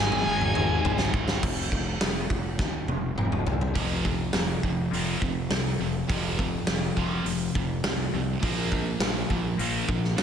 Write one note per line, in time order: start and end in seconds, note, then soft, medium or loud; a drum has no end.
0.00 0.24 G#1 medium
0.00 0.25 G#2 medium
0.00 1.43 G#2 medium
0.00 0.26 D#3 loud
0.00 1.42 D#3 medium
0.00 0.27 G#3 loud
0.00 1.41 G#3 medium
0.00 1.11 G#5 medium
0.12 mid tom medium
0.27 0.77 G#1 medium
0.27 1.41 G#2 medium
0.27 1.42 D#3 medium
0.27 1.43 G#3 loud
0.41 mid tom medium
0.55 mid tom medium
0.84 1.10 G#1 loud
0.84 floor tom medium
0.98 snare medium
1.14 1.39 G#1 medium
1.14 kick loud
1.28 snare loud
1.43 1.70 F1 loud
1.43 kick loud
1.43 crash loud
1.71 1.99 F1 medium
1.71 kick medium
2.01 2.29 F1 medium
2.01 snare loud
2.01 open hi-hat medium
2.30 2.58 F1 medium
2.30 kick medium
2.59 2.87 D#2 medium
2.59 kick loud
2.59 snare medium
2.88 3.15 F1 medium
2.88 high tom medium
3.15 3.44 F1 medium
3.15 mid tom medium
3.32 mid tom medium
3.46 3.77 C2 medium
3.46 floor tom medium
3.61 floor tom medium
3.75 4.20 F1 medium
3.75 4.03 F2 medium
3.75 4.03 C3 medium
3.75 4.03 F3 loud
3.75 kick loud
3.75 open hi-hat medium
4.04 4.31 F2 medium
4.04 4.31 C3 medium
4.04 kick medium
4.33 4.56 F1 medium
4.33 4.60 F2 medium
4.33 4.60 C3 medium
4.33 snare loud
4.33 open hi-hat soft
4.61 4.86 F1 medium
4.61 4.89 F2 medium
4.61 4.89 C3 medium
4.61 kick medium
4.90 5.15 F1 medium
4.90 5.19 F2 medium
4.90 5.19 C3 loud
4.90 5.20 F3 loud
4.90 open hi-hat medium
4.94 5.21 F2 medium
5.20 5.44 F1 medium
5.20 5.47 F2 medium
5.20 5.47 C3 medium
5.20 kick medium
5.50 5.73 C2 medium
5.50 5.76 F2 medium
5.50 5.77 C3 medium
5.50 snare loud
5.50 open hi-hat medium
5.78 6.02 F1 medium
5.78 6.05 F2 medium
5.78 6.05 C3 medium
6.07 6.54 F1 medium
6.07 6.36 F2 loud
6.07 6.36 C3 medium
6.07 6.36 F3 medium
6.07 kick loud
6.07 open hi-hat medium
6.37 6.64 F2 medium
6.37 6.64 C3 medium
6.37 kick medium
6.66 6.90 F1 medium
6.66 6.93 F2 medium
6.66 6.93 C3 medium
6.66 snare loud
6.66 open hi-hat medium
6.96 7.19 F1 medium
6.96 7.24 F2 medium
6.96 7.24 C3 medium
6.96 7.24 F3 loud
6.96 kick medium
7.25 7.48 F1 medium
7.25 7.52 F2 medium
7.25 7.52 C3 medium
7.25 open hi-hat medium
7.55 7.77 F1 medium
7.55 7.81 F2 medium
7.55 7.81 C3 medium
7.55 kick medium
7.84 8.06 C2 medium
7.84 8.10 F2 medium
7.84 8.10 C3 medium
7.84 snare loud
7.84 open hi-hat medium
8.13 8.36 C2 medium
8.13 8.39 F2 medium
8.13 8.40 C3 medium
8.41 8.87 A#1 medium
8.41 8.69 A#2 medium
8.41 8.69 F3 loud
8.41 8.70 A#3 loud
8.41 kick loud
8.41 open hi-hat medium
8.70 8.97 A#2 medium
8.70 8.97 F3 medium
8.70 kick medium
9.00 9.23 A#1 medium
9.00 9.27 A#2 medium
9.00 9.27 F3 medium
9.00 snare loud
9.00 open hi-hat medium
9.28 9.52 A#1 medium
9.28 9.55 A#2 medium
9.28 9.56 F3 medium
9.28 kick medium
9.57 9.81 A#1 medium
9.57 9.85 A#2 medium
9.57 9.86 F3 loud
9.57 9.86 A#3 medium
9.57 open hi-hat medium
9.87 10.11 A#1 medium
9.87 10.14 A#2 medium
9.87 10.14 F3 medium
9.87 kick medium
10.04 snare soft
10.16 10.23 F2 medium
10.16 10.23 A#2 medium
10.16 10.23 F3 medium
10.16 snare loud
10.16 open hi-hat soft